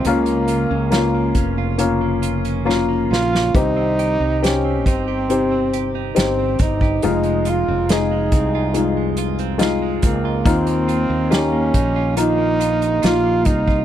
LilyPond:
<<
  \new Staff \with { instrumentName = "Clean electric guitar" } { \time 4/4 \key f \minor \tempo 4 = 70 des16 bes16 f'16 des'16 f'16 bes16 des'16 f'16 des16 bes16 f'16 des'16 f'16 bes16 des'16 f'16 | r16 c'16 g'16 ees'16 g'16 c'16 ees'16 g'16 c16 c'16 g'16 ees'16 g'16 c'16 ees'16 g'16 | f,16 aes16 f'16 c'16 f'16 aes16 c'16 f'16 f,16 aes16 f'16 c'16 f'16 aes16 c'16 f'16 | ees16 bes16 f'16 ees'16 f'16 bes16 ees'16 f'16 ees16 bes16 f'16 ees'16 f'16 bes16 ees'16 f'16 | }
  \new Staff \with { instrumentName = "French horn" } { \time 4/4 \key f \minor bes4. r2 f'8 | ees'4 des'8 c'4. c'8 ees'8 | ees'8 f'8 ees'4. r4 bes8 | c'4 des'4 ees'4 f'8 ees'8 | }
  \new Staff \with { instrumentName = "Upright piano" } { \time 4/4 \key f \minor <bes des' f'>4 <bes des' f'>4 <bes des' f'>4 <bes des' f'>4 | <c' ees' g'>4 <ees' g' c''>4 <c' ees' g'>4 <c' ees' g'>4 | <aes ees' f'>4 <aes ees' aes'>4 <aes ees' f'>4 <aes ees' f'>4 | <bes ees' f'>4 <bes ees' g'>4 <bes ees' f'>4 <bes ees' f'>4 | }
  \new Staff \with { instrumentName = "Upright piano" } { \clef bass \time 4/4 \key f \minor des4. r2 r8 | ees4. r2 r8 | r1 | ees4. r2 r8 | }
  \new Staff \with { instrumentName = "Fretless electric bass" } { \clef bass \time 4/4 \key f \minor des,8. des,8. f,,2 bes,,8 | c,8. c,8. g,,4. g,,8 g,,8 | f,,8. f,,8. c,2 des,8 | ees,8. ees,8. bes,,4. bes,,8 c,8 | }
  \new DrumStaff \with { instrumentName = "Drums" } \drummode { \time 4/4 hh16 hh16 hh8 <hh sn>8 <hh bd>8 hh8 hh16 hh16 sn8 sn16 sn16 | <hh bd>8 hh8 <hh sn>8 <hh bd>8 hh8 hh8 <hh sn>8 <hh bd>16 bd16 | hh16 hh16 hh8 <hh sn>8 <hh bd>8 hh8 hh16 hh16 <hh sn>8 <hh bd>8 | <hh bd>16 hh16 hh8 <hh sn>8 <hh bd>8 hh8 hh16 hh16 <hh sn>8 <hh bd>16 bd16 | }
>>